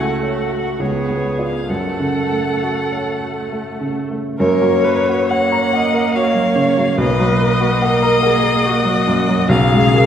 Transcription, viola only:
0, 0, Header, 1, 2, 480
1, 0, Start_track
1, 0, Key_signature, 3, "minor"
1, 0, Tempo, 862069
1, 938, Time_signature, 3, 2, 24, 8
1, 938, Tempo, 904977
1, 2370, Key_signature, 6, "major"
1, 2858, Tempo, 839161
1, 5258, Tempo, 895522
1, 5559, End_track
2, 0, Start_track
2, 0, Title_t, "Viola"
2, 0, Program_c, 0, 41
2, 0, Note_on_c, 0, 57, 58
2, 447, Note_on_c, 0, 59, 45
2, 456, Note_off_c, 0, 57, 0
2, 936, Note_off_c, 0, 59, 0
2, 939, Note_on_c, 0, 57, 46
2, 2234, Note_off_c, 0, 57, 0
2, 2369, Note_on_c, 0, 70, 80
2, 2613, Note_on_c, 0, 71, 72
2, 2621, Note_off_c, 0, 70, 0
2, 2853, Note_off_c, 0, 71, 0
2, 2856, Note_on_c, 0, 73, 75
2, 3107, Note_on_c, 0, 75, 71
2, 3116, Note_off_c, 0, 73, 0
2, 3345, Note_on_c, 0, 73, 71
2, 3353, Note_off_c, 0, 75, 0
2, 3826, Note_off_c, 0, 73, 0
2, 3829, Note_on_c, 0, 71, 76
2, 4309, Note_on_c, 0, 70, 86
2, 4317, Note_off_c, 0, 71, 0
2, 4544, Note_on_c, 0, 68, 73
2, 4553, Note_off_c, 0, 70, 0
2, 4781, Note_on_c, 0, 66, 71
2, 4790, Note_off_c, 0, 68, 0
2, 5260, Note_off_c, 0, 66, 0
2, 5265, Note_on_c, 0, 68, 76
2, 5501, Note_on_c, 0, 70, 82
2, 5509, Note_off_c, 0, 68, 0
2, 5559, Note_off_c, 0, 70, 0
2, 5559, End_track
0, 0, End_of_file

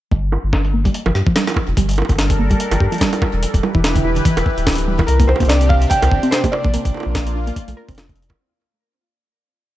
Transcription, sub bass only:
0, 0, Header, 1, 2, 480
1, 0, Start_track
1, 0, Key_signature, -2, "minor"
1, 0, Tempo, 413793
1, 135, Time_signature, 4, 2, 24, 8
1, 11322, End_track
2, 0, Start_track
2, 0, Title_t, "Sub bass"
2, 0, Program_c, 0, 38
2, 134, Note_on_c, 0, 31, 92
2, 433, Note_off_c, 0, 31, 0
2, 509, Note_on_c, 0, 31, 85
2, 1035, Note_off_c, 0, 31, 0
2, 1228, Note_on_c, 0, 31, 101
2, 1297, Note_off_c, 0, 31, 0
2, 1333, Note_on_c, 0, 43, 89
2, 1420, Note_off_c, 0, 43, 0
2, 1948, Note_on_c, 0, 29, 99
2, 2017, Note_off_c, 0, 29, 0
2, 2053, Note_on_c, 0, 31, 96
2, 2352, Note_off_c, 0, 31, 0
2, 2428, Note_on_c, 0, 31, 89
2, 2954, Note_off_c, 0, 31, 0
2, 3147, Note_on_c, 0, 31, 103
2, 3216, Note_off_c, 0, 31, 0
2, 3253, Note_on_c, 0, 43, 88
2, 3341, Note_off_c, 0, 43, 0
2, 3867, Note_on_c, 0, 28, 99
2, 4012, Note_off_c, 0, 28, 0
2, 4108, Note_on_c, 0, 28, 89
2, 4176, Note_off_c, 0, 28, 0
2, 4348, Note_on_c, 0, 28, 86
2, 4874, Note_off_c, 0, 28, 0
2, 5068, Note_on_c, 0, 28, 98
2, 5136, Note_off_c, 0, 28, 0
2, 5308, Note_on_c, 0, 26, 102
2, 5834, Note_off_c, 0, 26, 0
2, 5893, Note_on_c, 0, 36, 100
2, 6192, Note_off_c, 0, 36, 0
2, 6267, Note_on_c, 0, 36, 87
2, 6794, Note_off_c, 0, 36, 0
2, 6989, Note_on_c, 0, 36, 107
2, 7057, Note_off_c, 0, 36, 0
2, 7094, Note_on_c, 0, 31, 89
2, 7181, Note_off_c, 0, 31, 0
2, 7709, Note_on_c, 0, 34, 98
2, 7854, Note_off_c, 0, 34, 0
2, 7948, Note_on_c, 0, 34, 91
2, 8017, Note_off_c, 0, 34, 0
2, 8190, Note_on_c, 0, 34, 91
2, 8715, Note_off_c, 0, 34, 0
2, 8909, Note_on_c, 0, 34, 100
2, 8977, Note_off_c, 0, 34, 0
2, 9147, Note_on_c, 0, 29, 102
2, 9674, Note_off_c, 0, 29, 0
2, 11322, End_track
0, 0, End_of_file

